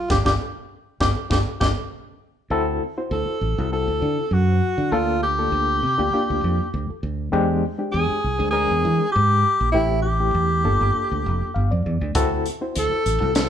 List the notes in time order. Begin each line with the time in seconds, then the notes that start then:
Already playing: F4
0.10 G1 D4 F4 G4, kick, snare
0.25 G1 D4 F4 G4, kick, snare
1.00 G1 D4 F4 G4, kick, snare
1.30 G1 D4 F4 G4, kick, snare
1.60 G1 D4 F4 G4, kick, snare
2.50 D2 C4 E4 F#4 A4
2.98 C4 E4 F#4 C5
3.11 D2 A4
3.41 A1
3.58 C2 C4 E4 F#4 A4
3.72 C4 E4 F#4 A4
3.88 D2
4.02 D3
4.31 F#2 F#4
4.48 F#4 C5
4.78 D3
4.92 D2 A#3 D4 F4 A4
5.23 G4
5.38 A#3 D4 F4 A4
5.52 D2
5.83 C3
5.98 D2 A#3 D4 F4 G4
6.13 A#3 D4 F4 G4, muted fingered electric bass stroke
6.30 D2
6.44 F2
6.74 D2
6.89 F4 A4, muted fingered electric bass stroke
7.03 D2
7.32 E2 G#3 C4 D4 G4
7.78 G#3 C4 D4 G4
7.92 E2 G#4
8.10 muted fingered electric bass stroke
8.24 C2
8.39 D2 G#3 C4 D4 G#4
8.51 G#3 C4 D4 G#4 A#4
8.71 E2
8.85 E3
9.12 G#2 G4
9.30 D4 G4
9.61 A#1
9.72 A1 A3 C4 E4 G4
10.02 G4
10.20 A3 C4 E4 G4
10.34 E2
10.64 G1 A#3 D4 F4 A4
10.81 G1
10.95 muted fingered electric bass stroke
11.12 D2
11.26 F1
11.54 G1 F5
11.71 F2 F4 C5 D5
11.86 E2
12.01 D2
12.15 D2 C4 E4 F#4 A4, kick, closed hi-hat
12.46 closed hi-hat
12.61 C4 E4 F#4 C5
12.76 D2 A4, closed hi-hat
12.92 muted fingered electric bass stroke
13.06 A1, closed hi-hat
13.21 C2 C4 E4 F#4 A4
13.35 C4 E4 F#4 A4 C5, snare, closed hi-hat